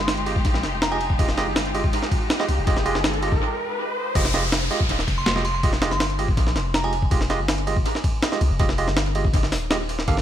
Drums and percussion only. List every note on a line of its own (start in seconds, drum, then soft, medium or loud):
0.08 snare loud
0.08 ride medium
0.17 ride soft
0.26 ride medium
0.36 kick medium
0.45 kick loud
0.45 ride medium
0.54 snare soft
0.63 snare soft
0.63 ride medium
0.82 snare loud
0.82 ride medium
0.92 ride soft
1.01 ride medium
1.10 kick medium
1.19 kick loud
1.19 ride medium
1.29 snare soft
1.38 snare soft
1.38 ride medium
1.56 snare loud
1.56 ride medium
1.66 ride soft
1.75 ride medium
1.84 kick loud
1.93 ride medium
2.03 snare soft
2.12 kick medium
2.12 ride medium
2.30 snare loud
2.30 ride medium
2.40 snare soft
2.48 ride medium
2.67 kick loud
2.67 ride medium
2.77 snare soft
2.86 ride medium
2.95 snare soft
3.04 snare loud
3.04 ride medium
3.14 ride soft
3.23 ride medium
3.32 kick loud
4.15 kick loud
4.15 crash medium
4.15 ride medium
4.25 snare soft
4.34 snare soft
4.34 ride medium
4.52 snare loud
4.52 ride medium
4.62 ride soft
4.71 ride medium
4.80 kick loud
4.89 ride medium
4.99 snare soft
5.08 kick loud
5.08 ride medium
5.26 snare loud
5.26 ride medium
5.36 snare soft
5.45 ride medium
5.63 kick loud
5.63 ride medium
5.73 snare soft
5.82 snare loud
5.82 ride medium
5.91 snare soft
6.00 snare loud
6.00 ride medium
6.10 ride soft
6.19 ride medium
6.28 kick loud
6.37 kick loud
6.37 ride medium
6.47 snare soft
6.56 snare soft
6.56 ride medium
6.74 snare loud
6.74 ride medium
6.84 ride soft
6.93 ride medium
7.02 kick medium
7.11 kick loud
7.11 ride medium
7.21 snare soft
7.30 snare soft
7.30 ride medium
7.48 snare loud
7.48 ride medium
7.58 ride soft
7.67 ride medium
7.77 kick medium
7.86 ride medium
7.95 snare soft
8.04 kick medium
8.04 ride medium
8.23 snare loud
8.23 ride medium
8.32 snare soft
8.41 ride medium
8.59 kick loud
8.59 ride medium
8.69 snare soft
8.78 ride medium
8.88 snare soft
8.97 snare loud
8.97 ride medium
9.06 ride soft
9.15 ride medium
9.25 kick loud
9.34 kick loud
9.34 ride medium
9.43 snare soft
9.52 snare medium
9.52 open hi-hat medium
9.71 snare loud
9.71 ride medium
9.89 ride medium
9.99 snare soft
10.08 kick loud
10.08 ride medium
10.17 snare soft